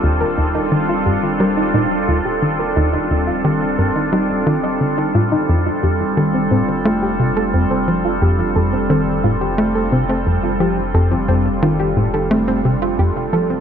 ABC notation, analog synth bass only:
X:1
M:4/4
L:1/8
Q:1/4=88
K:Fmix
V:1 name="Analog synth bass" clef=bass
E,, E,, E, G,, G, B,, E,, E, | E,, E,, E, G,, G, E, D, A,, | F,, F,, E, A,, A, C, F,, F, | F,, F,, E, A,, A, C, F,, F, |
F,, F,, E, A,, A, C, F,, F, |]